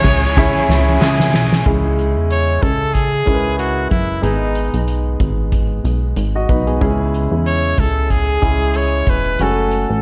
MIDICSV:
0, 0, Header, 1, 7, 480
1, 0, Start_track
1, 0, Key_signature, 4, "minor"
1, 0, Tempo, 644468
1, 1232, Time_signature, 4, 2, 24, 8
1, 7462, End_track
2, 0, Start_track
2, 0, Title_t, "Trumpet"
2, 0, Program_c, 0, 56
2, 0, Note_on_c, 0, 73, 96
2, 761, Note_off_c, 0, 73, 0
2, 1724, Note_on_c, 0, 73, 78
2, 1954, Note_on_c, 0, 69, 77
2, 1965, Note_off_c, 0, 73, 0
2, 2185, Note_on_c, 0, 68, 86
2, 2196, Note_off_c, 0, 69, 0
2, 2664, Note_off_c, 0, 68, 0
2, 2669, Note_on_c, 0, 66, 78
2, 2894, Note_off_c, 0, 66, 0
2, 2911, Note_on_c, 0, 64, 73
2, 3135, Note_off_c, 0, 64, 0
2, 3154, Note_on_c, 0, 63, 62
2, 3604, Note_off_c, 0, 63, 0
2, 5560, Note_on_c, 0, 73, 87
2, 5806, Note_on_c, 0, 69, 78
2, 5817, Note_off_c, 0, 73, 0
2, 6038, Note_on_c, 0, 68, 87
2, 6049, Note_off_c, 0, 69, 0
2, 6528, Note_on_c, 0, 73, 86
2, 6540, Note_off_c, 0, 68, 0
2, 6776, Note_on_c, 0, 71, 76
2, 6787, Note_off_c, 0, 73, 0
2, 7019, Note_on_c, 0, 69, 71
2, 7030, Note_off_c, 0, 71, 0
2, 7462, Note_off_c, 0, 69, 0
2, 7462, End_track
3, 0, Start_track
3, 0, Title_t, "Grand piano"
3, 0, Program_c, 1, 0
3, 0, Control_c, 1, 64, 127
3, 0, Note_on_c, 1, 49, 64
3, 0, Note_on_c, 1, 61, 74
3, 0, Note_on_c, 1, 64, 67
3, 0, Note_on_c, 1, 68, 67
3, 0, Note_on_c, 1, 73, 73
3, 0, Note_on_c, 1, 76, 76
3, 275, Note_off_c, 1, 61, 0
3, 275, Note_on_c, 1, 61, 88
3, 279, Note_off_c, 1, 73, 0
3, 279, Note_on_c, 1, 73, 83
3, 280, Note_off_c, 1, 64, 0
3, 280, Note_on_c, 1, 64, 73
3, 281, Note_off_c, 1, 68, 0
3, 281, Note_on_c, 1, 68, 77
3, 283, Note_off_c, 1, 76, 0
3, 283, Note_on_c, 1, 76, 99
3, 968, Note_off_c, 1, 61, 0
3, 970, Note_off_c, 1, 73, 0
3, 971, Note_off_c, 1, 64, 0
3, 971, Note_off_c, 1, 68, 0
3, 972, Note_off_c, 1, 76, 0
3, 1233, Note_on_c, 1, 56, 68
3, 1235, Note_on_c, 1, 61, 61
3, 1239, Note_on_c, 1, 64, 64
3, 1240, Note_off_c, 1, 49, 0
3, 1240, Note_on_c, 1, 49, 58
3, 1241, Control_c, 1, 64, 0
3, 1242, Note_on_c, 1, 68, 78
3, 1358, Control_c, 1, 64, 127
3, 1926, Note_off_c, 1, 49, 0
3, 1928, Note_off_c, 1, 56, 0
3, 1928, Note_off_c, 1, 61, 0
3, 1930, Note_off_c, 1, 64, 0
3, 1932, Note_off_c, 1, 68, 0
3, 2424, Note_on_c, 1, 56, 60
3, 2428, Note_on_c, 1, 61, 55
3, 2433, Note_on_c, 1, 64, 54
3, 2433, Note_on_c, 1, 70, 53
3, 2484, Note_on_c, 1, 71, 67
3, 2487, Note_off_c, 1, 70, 0
3, 2951, Note_off_c, 1, 56, 0
3, 2953, Note_off_c, 1, 61, 0
3, 2956, Note_off_c, 1, 64, 0
3, 2982, Note_off_c, 1, 71, 0
3, 3140, Note_on_c, 1, 56, 61
3, 3147, Note_on_c, 1, 44, 49
3, 3147, Note_on_c, 1, 63, 57
3, 3148, Note_on_c, 1, 68, 69
3, 3149, Note_on_c, 1, 59, 54
3, 3161, Control_c, 1, 64, 0
3, 3280, Control_c, 1, 64, 127
3, 3840, Note_off_c, 1, 44, 0
3, 3841, Note_off_c, 1, 56, 0
3, 3845, Note_off_c, 1, 63, 0
3, 3845, Note_off_c, 1, 68, 0
3, 3846, Note_off_c, 1, 59, 0
3, 4733, Note_on_c, 1, 75, 57
3, 4735, Note_on_c, 1, 66, 51
3, 4831, Note_off_c, 1, 75, 0
3, 4832, Note_off_c, 1, 66, 0
3, 4836, Note_on_c, 1, 71, 60
3, 4838, Note_on_c, 1, 63, 49
3, 4963, Note_off_c, 1, 71, 0
3, 4964, Note_off_c, 1, 63, 0
3, 4969, Note_on_c, 1, 68, 57
3, 4976, Note_on_c, 1, 59, 46
3, 5067, Note_off_c, 1, 68, 0
3, 5072, Note_on_c, 1, 64, 68
3, 5073, Note_on_c, 1, 49, 64
3, 5073, Note_on_c, 1, 56, 70
3, 5075, Note_on_c, 1, 61, 71
3, 5078, Note_on_c, 1, 68, 85
3, 5082, Control_c, 1, 64, 0
3, 5200, Note_off_c, 1, 59, 0
3, 5221, Control_c, 1, 64, 127
3, 5764, Note_off_c, 1, 49, 0
3, 5768, Note_off_c, 1, 56, 0
3, 5768, Note_off_c, 1, 64, 0
3, 5769, Note_off_c, 1, 61, 0
3, 5771, Note_off_c, 1, 68, 0
3, 6269, Note_on_c, 1, 56, 62
3, 6270, Note_on_c, 1, 61, 57
3, 6271, Note_on_c, 1, 68, 71
3, 6273, Note_on_c, 1, 64, 55
3, 6795, Note_off_c, 1, 56, 0
3, 6795, Note_off_c, 1, 61, 0
3, 6796, Note_off_c, 1, 68, 0
3, 6797, Note_off_c, 1, 64, 0
3, 7000, Note_on_c, 1, 56, 51
3, 7003, Control_c, 1, 64, 0
3, 7004, Note_on_c, 1, 61, 56
3, 7006, Note_on_c, 1, 66, 55
3, 7009, Note_on_c, 1, 80, 65
3, 7049, Note_on_c, 1, 57, 58
3, 7051, Note_off_c, 1, 56, 0
3, 7119, Control_c, 1, 64, 127
3, 7462, Note_off_c, 1, 57, 0
3, 7462, Note_off_c, 1, 61, 0
3, 7462, Note_off_c, 1, 66, 0
3, 7462, Note_off_c, 1, 80, 0
3, 7462, End_track
4, 0, Start_track
4, 0, Title_t, "Overdriven electric guitar"
4, 0, Program_c, 2, 29
4, 26, Note_on_c, 2, 56, 65
4, 32, Note_on_c, 2, 61, 72
4, 40, Note_on_c, 2, 64, 65
4, 48, Note_on_c, 2, 68, 70
4, 384, Note_off_c, 2, 68, 0
4, 393, Note_on_c, 2, 68, 57
4, 398, Note_off_c, 2, 64, 0
4, 403, Note_off_c, 2, 56, 0
4, 406, Note_off_c, 2, 61, 0
4, 407, Note_on_c, 2, 64, 59
4, 419, Note_on_c, 2, 61, 48
4, 741, Note_off_c, 2, 61, 0
4, 741, Note_on_c, 2, 56, 71
4, 745, Note_off_c, 2, 68, 0
4, 748, Note_off_c, 2, 64, 0
4, 750, Note_on_c, 2, 61, 69
4, 757, Note_on_c, 2, 64, 74
4, 763, Note_on_c, 2, 68, 69
4, 981, Note_off_c, 2, 56, 0
4, 990, Note_on_c, 2, 56, 68
4, 991, Note_off_c, 2, 61, 0
4, 994, Note_off_c, 2, 64, 0
4, 997, Note_off_c, 2, 68, 0
4, 1000, Note_on_c, 2, 61, 70
4, 1005, Note_on_c, 2, 64, 75
4, 1011, Note_on_c, 2, 68, 76
4, 1231, Note_off_c, 2, 56, 0
4, 1236, Note_off_c, 2, 61, 0
4, 1238, Note_off_c, 2, 64, 0
4, 1242, Note_off_c, 2, 68, 0
4, 7462, End_track
5, 0, Start_track
5, 0, Title_t, "String section"
5, 0, Program_c, 3, 48
5, 0, Note_on_c, 3, 49, 74
5, 0, Note_on_c, 3, 61, 72
5, 0, Note_on_c, 3, 64, 68
5, 0, Note_on_c, 3, 68, 63
5, 1196, Note_off_c, 3, 68, 0
5, 1212, Note_off_c, 3, 49, 0
5, 1213, Note_off_c, 3, 61, 0
5, 1216, Note_off_c, 3, 64, 0
5, 7462, End_track
6, 0, Start_track
6, 0, Title_t, "Analog synth bass"
6, 0, Program_c, 4, 38
6, 30, Note_on_c, 4, 37, 90
6, 379, Note_off_c, 4, 37, 0
6, 514, Note_on_c, 4, 37, 84
6, 736, Note_off_c, 4, 37, 0
6, 749, Note_on_c, 4, 37, 98
6, 988, Note_on_c, 4, 35, 97
6, 1000, Note_off_c, 4, 37, 0
6, 1213, Note_off_c, 4, 35, 0
6, 1236, Note_on_c, 4, 37, 89
6, 1605, Note_on_c, 4, 40, 86
6, 1616, Note_off_c, 4, 37, 0
6, 1927, Note_off_c, 4, 40, 0
6, 1957, Note_on_c, 4, 37, 90
6, 2405, Note_off_c, 4, 37, 0
6, 2436, Note_on_c, 4, 37, 81
6, 2885, Note_off_c, 4, 37, 0
6, 2913, Note_on_c, 4, 30, 86
6, 3136, Note_off_c, 4, 30, 0
6, 3149, Note_on_c, 4, 32, 91
6, 3499, Note_off_c, 4, 32, 0
6, 3527, Note_on_c, 4, 35, 78
6, 3849, Note_off_c, 4, 35, 0
6, 3873, Note_on_c, 4, 32, 85
6, 4323, Note_off_c, 4, 32, 0
6, 4352, Note_on_c, 4, 35, 85
6, 4576, Note_off_c, 4, 35, 0
6, 4591, Note_on_c, 4, 32, 88
6, 4816, Note_off_c, 4, 32, 0
6, 4834, Note_on_c, 4, 35, 91
6, 5057, Note_off_c, 4, 35, 0
6, 5074, Note_on_c, 4, 37, 96
6, 5422, Note_off_c, 4, 37, 0
6, 5448, Note_on_c, 4, 40, 80
6, 5770, Note_off_c, 4, 40, 0
6, 5793, Note_on_c, 4, 37, 85
6, 6244, Note_off_c, 4, 37, 0
6, 6275, Note_on_c, 4, 37, 85
6, 6725, Note_off_c, 4, 37, 0
6, 6756, Note_on_c, 4, 28, 85
6, 6978, Note_off_c, 4, 28, 0
6, 6998, Note_on_c, 4, 30, 90
6, 7345, Note_off_c, 4, 30, 0
6, 7371, Note_on_c, 4, 33, 88
6, 7462, Note_off_c, 4, 33, 0
6, 7462, End_track
7, 0, Start_track
7, 0, Title_t, "Drums"
7, 34, Note_on_c, 9, 36, 100
7, 35, Note_on_c, 9, 46, 78
7, 38, Note_on_c, 9, 44, 70
7, 108, Note_off_c, 9, 36, 0
7, 110, Note_off_c, 9, 46, 0
7, 112, Note_off_c, 9, 44, 0
7, 172, Note_on_c, 9, 38, 31
7, 247, Note_off_c, 9, 38, 0
7, 276, Note_on_c, 9, 36, 95
7, 280, Note_on_c, 9, 38, 62
7, 350, Note_off_c, 9, 36, 0
7, 355, Note_off_c, 9, 38, 0
7, 520, Note_on_c, 9, 38, 78
7, 595, Note_off_c, 9, 38, 0
7, 757, Note_on_c, 9, 38, 86
7, 759, Note_on_c, 9, 39, 87
7, 831, Note_off_c, 9, 38, 0
7, 834, Note_off_c, 9, 39, 0
7, 892, Note_on_c, 9, 38, 84
7, 966, Note_off_c, 9, 38, 0
7, 997, Note_on_c, 9, 38, 101
7, 1072, Note_off_c, 9, 38, 0
7, 1135, Note_on_c, 9, 38, 94
7, 1210, Note_off_c, 9, 38, 0
7, 1236, Note_on_c, 9, 36, 85
7, 1240, Note_on_c, 9, 49, 70
7, 1311, Note_off_c, 9, 36, 0
7, 1314, Note_off_c, 9, 49, 0
7, 1479, Note_on_c, 9, 42, 60
7, 1554, Note_off_c, 9, 42, 0
7, 1717, Note_on_c, 9, 42, 67
7, 1791, Note_off_c, 9, 42, 0
7, 1953, Note_on_c, 9, 42, 60
7, 1956, Note_on_c, 9, 36, 80
7, 2028, Note_off_c, 9, 42, 0
7, 2030, Note_off_c, 9, 36, 0
7, 2196, Note_on_c, 9, 36, 70
7, 2196, Note_on_c, 9, 42, 75
7, 2270, Note_off_c, 9, 36, 0
7, 2271, Note_off_c, 9, 42, 0
7, 2437, Note_on_c, 9, 36, 74
7, 2441, Note_on_c, 9, 42, 58
7, 2512, Note_off_c, 9, 36, 0
7, 2516, Note_off_c, 9, 42, 0
7, 2674, Note_on_c, 9, 42, 73
7, 2749, Note_off_c, 9, 42, 0
7, 2911, Note_on_c, 9, 42, 67
7, 2915, Note_on_c, 9, 36, 79
7, 2986, Note_off_c, 9, 42, 0
7, 2989, Note_off_c, 9, 36, 0
7, 3153, Note_on_c, 9, 42, 70
7, 3228, Note_off_c, 9, 42, 0
7, 3391, Note_on_c, 9, 42, 58
7, 3465, Note_off_c, 9, 42, 0
7, 3529, Note_on_c, 9, 42, 48
7, 3603, Note_off_c, 9, 42, 0
7, 3633, Note_on_c, 9, 42, 64
7, 3707, Note_off_c, 9, 42, 0
7, 3872, Note_on_c, 9, 42, 66
7, 3873, Note_on_c, 9, 36, 78
7, 3947, Note_off_c, 9, 42, 0
7, 3948, Note_off_c, 9, 36, 0
7, 4112, Note_on_c, 9, 42, 74
7, 4113, Note_on_c, 9, 36, 75
7, 4186, Note_off_c, 9, 42, 0
7, 4188, Note_off_c, 9, 36, 0
7, 4356, Note_on_c, 9, 42, 60
7, 4431, Note_off_c, 9, 42, 0
7, 4591, Note_on_c, 9, 42, 70
7, 4666, Note_off_c, 9, 42, 0
7, 4835, Note_on_c, 9, 36, 82
7, 4836, Note_on_c, 9, 42, 69
7, 4910, Note_off_c, 9, 36, 0
7, 4910, Note_off_c, 9, 42, 0
7, 4969, Note_on_c, 9, 42, 36
7, 5044, Note_off_c, 9, 42, 0
7, 5075, Note_on_c, 9, 36, 94
7, 5075, Note_on_c, 9, 42, 67
7, 5150, Note_off_c, 9, 36, 0
7, 5150, Note_off_c, 9, 42, 0
7, 5320, Note_on_c, 9, 42, 63
7, 5395, Note_off_c, 9, 42, 0
7, 5558, Note_on_c, 9, 42, 73
7, 5632, Note_off_c, 9, 42, 0
7, 5790, Note_on_c, 9, 42, 65
7, 5795, Note_on_c, 9, 36, 85
7, 5865, Note_off_c, 9, 42, 0
7, 5869, Note_off_c, 9, 36, 0
7, 6035, Note_on_c, 9, 42, 79
7, 6036, Note_on_c, 9, 36, 71
7, 6110, Note_off_c, 9, 36, 0
7, 6110, Note_off_c, 9, 42, 0
7, 6276, Note_on_c, 9, 36, 73
7, 6276, Note_on_c, 9, 42, 57
7, 6350, Note_off_c, 9, 42, 0
7, 6351, Note_off_c, 9, 36, 0
7, 6509, Note_on_c, 9, 42, 70
7, 6583, Note_off_c, 9, 42, 0
7, 6752, Note_on_c, 9, 42, 67
7, 6756, Note_on_c, 9, 36, 83
7, 6827, Note_off_c, 9, 42, 0
7, 6830, Note_off_c, 9, 36, 0
7, 6886, Note_on_c, 9, 42, 35
7, 6961, Note_off_c, 9, 42, 0
7, 6993, Note_on_c, 9, 42, 69
7, 7068, Note_off_c, 9, 42, 0
7, 7234, Note_on_c, 9, 42, 59
7, 7308, Note_off_c, 9, 42, 0
7, 7462, End_track
0, 0, End_of_file